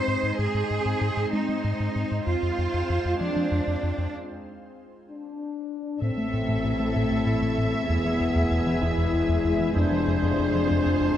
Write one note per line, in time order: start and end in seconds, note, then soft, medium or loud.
0.00 2.26 G#3 medium
0.00 2.23 C4 medium
0.00 2.27 D#4 medium
0.00 0.39 C5 medium
0.00 2.23 C5 medium
0.08 0.17 G#2 medium
0.23 0.33 G#2 soft
0.39 0.48 G#2 medium
0.39 1.31 G#4 medium
0.55 0.64 G#2 soft
0.71 0.80 G#2 soft
0.85 0.95 G#2 medium
1.01 1.11 G#2 medium
1.17 1.27 G#2 soft
1.33 1.42 G#3 medium
1.33 2.25 D#4 medium
1.49 1.58 G#3 medium
1.64 1.74 G#2 medium
1.80 1.89 G#2 medium
1.96 2.05 G#2 medium
2.11 2.21 G#2 soft
2.27 2.36 F2 medium
2.27 4.10 G#3 medium
2.27 4.11 C4 medium
2.27 4.14 F4 medium
2.27 3.19 F4 medium
2.27 4.11 C5 medium
2.43 2.52 F2 soft
2.58 2.68 F2 soft
2.74 2.83 F2 soft
2.90 2.99 F2 medium
3.05 3.15 F2 soft
3.21 3.30 F3 soft
3.21 4.13 D4 medium
3.36 3.46 F3 soft
3.52 3.61 F2 medium
3.67 3.77 F2 soft
3.83 3.93 F2 soft
3.98 4.08 F2 soft
5.09 5.98 D4 soft
6.01 7.85 A1 soft
6.01 6.11 A2 medium
6.01 7.85 A2 soft
6.01 7.85 A3 medium
6.01 7.90 C4 soft
6.01 9.73 E4 medium
6.01 7.85 A4 soft
6.01 9.73 E5 medium
6.01 9.73 E5 soft
6.18 6.27 A3 soft
6.33 6.43 A2 soft
6.49 6.58 A2 medium
6.65 6.74 A2 soft
6.80 6.89 A3 soft
6.96 7.05 A2 medium
7.12 7.21 A2 soft
7.27 7.36 A2 soft
7.42 7.52 A2 medium
7.58 7.68 A2 soft
7.74 7.83 A3 soft
7.89 9.73 E1 soft
7.89 9.73 E2 soft
7.89 7.99 E2 medium
7.89 11.17 G#3 medium
7.89 9.77 B3 medium
7.89 8.81 B3 medium
7.89 11.17 G#4 soft
8.05 8.14 E3 soft
8.20 8.30 E2 soft
8.36 8.45 E2 medium
8.51 8.61 E2 medium
8.67 8.76 E3 soft
8.82 8.92 E2 medium
8.82 9.77 E4 medium
8.98 9.07 E2 soft
9.14 9.23 E2 soft
9.29 9.39 E2 medium
9.44 9.54 E2 medium
9.60 9.70 E3 soft
9.76 11.17 F1 soft
9.76 9.86 F2 medium
9.76 11.17 F2 medium
9.76 11.17 C4 medium
9.76 11.17 D4 medium
9.76 11.17 F4 medium
9.76 11.17 C5 medium
9.76 11.17 C5 soft
9.92 10.01 F3 medium
10.07 10.17 F2 soft
10.23 10.33 F2 medium
10.39 10.49 F2 soft
10.55 10.64 F3 soft
10.71 10.80 F2 medium
10.86 10.95 F2 soft
11.01 11.11 F2 soft